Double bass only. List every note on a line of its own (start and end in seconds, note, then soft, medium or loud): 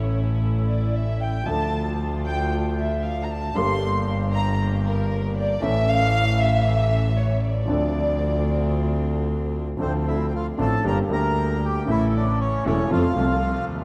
0.00 1.36 A1 medium
1.46 3.45 D2 medium
3.55 5.51 G1 medium
5.62 7.58 A1 loud
7.68 9.69 D2 medium
9.79 10.54 D2 medium
10.58 10.80 A1 medium
10.84 11.06 G1 medium
11.10 11.84 D2 medium
11.87 12.61 A1 medium
12.65 12.87 E1 medium
12.91 13.13 F2 medium
13.17 13.67 C2 medium
13.67 13.84 D#2 medium